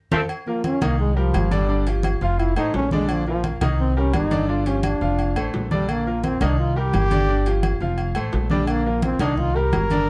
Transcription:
0.11 upright bass F2, trombone section F3 A3 C4, upright piano F4 A4 C5, cowbell, high conga, high timbale
0.29 high conga, low agogo
0.47 upright piano F3 F4 A#4, trombone A#3, high conga
0.64 trombone C#4, high conga, low timbale, low agogo
0.81 upright bass C2, upright piano D#3 D#4 D#5, trombone A#3, high conga, low conga, low agogo
0.99 trombone G#3, high conga
1.16 trombone F3, upright piano G3 G4 A#4, high conga
1.34 upright bass G1, high conga, low timbale, low agogo
1.51 upright piano D3 D4 D5, trombone G3, high conga, low agogo
1.68 upright piano D3 D4 D5, high conga
1.86 upright piano F3 F4 G4, high conga, low agogo
2.03 high conga, low timbale, low agogo
2.21 upright bass F1, upright piano F3 F4 F5, trombone F4, high conga
2.39 trombone E4, high conga, low agogo
2.56 upright bass A1, upright piano A3 A4 C5, trombone D#4, high conga, low agogo
2.74 upright bass A#1, trombone C#4, high conga, low timbale
2.91 upright piano D3 D4 D5, trombone G#3, high conga
3.08 trombone F3, high conga, low agogo
3.27 upright piano F3 F4 A#4, trombone F3, high conga
3.44 high conga, low timbale, low agogo
3.61 upright bass C2, upright piano D#3 D#4 D#5, high conga, low conga, low agogo
3.79 trombone C4, high conga
3.96 upright piano G3 G4 A#4, trombone C#4, high conga
4.13 upright bass G1, trombone D#4, high conga, low timbale, low agogo
4.31 upright piano D3 D4 D5, high conga, low agogo
4.48 upright piano D3 D4 D5, trombone F4, high conga
4.66 upright piano F3 F4 G4, trombone C#4, high conga, low agogo
4.83 trombone D4, high conga, low timbale, low agogo
5.01 upright bass F1, upright piano F3 F4 F5, high conga
5.19 high conga, low agogo
5.36 upright bass A1, upright piano A3 A4 C5, high conga, low agogo
5.54 upright bass A#1, high conga, low timbale
5.71 upright piano D3 D4 D5, trombone G3, high conga
5.89 trombone A#3, high conga, low agogo
6.06 upright piano F3 F4 A#4, high conga
6.24 trombone C4, high conga, low timbale, low agogo
6.41 upright bass C2, upright piano D#3 D#4 D#5, trombone D4, high conga, low conga, low agogo
6.58 trombone F4, high conga
6.76 upright piano G3 G4 A#4, trombone G4, high conga
6.93 upright bass G1, high conga, low timbale, low agogo
7.11 upright piano D3 D4 D5, high conga, low agogo
7.28 upright piano D3 D4 D5, high conga
7.46 upright piano F3 F4 G4, high conga, low agogo
7.63 high conga, low timbale, low agogo
7.80 upright bass F1, upright piano F3 F4 F5, high conga
7.98 high conga, low agogo
8.15 upright bass A1, upright piano A3 A4 C5, high conga, low agogo
8.32 upright bass A#1, high conga, low timbale
8.50 upright piano D3 D4 D5, trombone G3, high conga
8.67 trombone A#3, high conga, low agogo
8.85 upright piano F3 F4 A#4, high conga
9.02 trombone C4, high conga, low timbale, low agogo
9.19 upright bass C2, upright piano D#3 D#4 D#5, trombone D4, high conga, low conga, low agogo
9.37 trombone F4, high conga, low conga
9.55 upright piano G3 G4 A#4, trombone A#4, high conga
9.72 upright bass G1, high conga, low timbale, low agogo
9.90 upright piano D3 D4 D5, high conga, low agogo

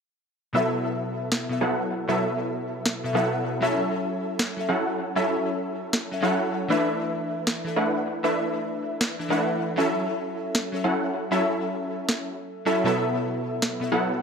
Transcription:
0.53 synth keys B2 B3 A4 E5, supersaw synth F#3 B3 E4 A4 E5
1.32 snare
1.49 synth keys B2 B3 A4 E5
1.61 supersaw synth F#3 B3 E4 A4 F#5
2.08 synth keys B2 B3 A4 E5, supersaw synth F#3 B3 E4 A4 E5
2.86 snare
3.04 synth keys B2 B3 A4 E5
3.13 synth keys B2 B3 A4, supersaw synth F#3 B3 E4 A4 F#5
3.17 synth keys E5
3.60 synth keys F#3 C#4 A4, supersaw synth F#3 C#4 E4 A4 E5
3.64 synth keys E5
4.39 snare
4.57 synth keys F#3 C#4 A4 E5
4.69 supersaw synth F#3 C#4 E4 A4 F#5
5.15 synth keys F#3 C#4 A4 E5, supersaw synth F#3 C#4 E4 A4 E5
5.93 snare
6.11 synth keys F#3 C#4 A4 E5
6.21 synth keys F#3 C#4 A4, supersaw synth F#3 C#4 E4 A4 F#5
6.25 synth keys E5
6.68 synth keys E3 D4 A4 E5, supersaw synth A3 D4 E4 B4 E5
7.47 snare
7.64 synth keys E3 D4 A4 E5
7.76 supersaw synth A3 D4 E4 B4 F#5
8.23 synth keys E3 D4 A4 E5, supersaw synth A3 D4 E4 B4 E5
9.01 snare
9.19 synth keys E3 D4 A4 E5
9.28 synth keys E3 D4 A4, supersaw synth A3 D4 E4 B4 F#5
9.32 synth keys E5
9.76 synth keys F#3 C#4 A4, supersaw synth F#3 C#4 E4 A4 E5
9.80 synth keys E5
10.55 snare
10.72 synth keys F#3 C#4 A4 E5
10.84 supersaw synth F#3 C#4 E4 A4 F#5
11.31 synth keys F#3 C#4 A4 E5, supersaw synth F#3 C#4 E4 A4 E5
12.09 snare
12.65 synth keys F#3 C#4 A4 E5, supersaw synth F#3 C#4 E4 A4 E5
12.84 synth keys B2 B3 A4, supersaw synth F#3 B3 E4 A4 E5
12.88 synth keys E5
13.62 snare
13.80 synth keys B2 B3 A4 E5
13.92 supersaw synth F#3 B3 E4 A4 F#5

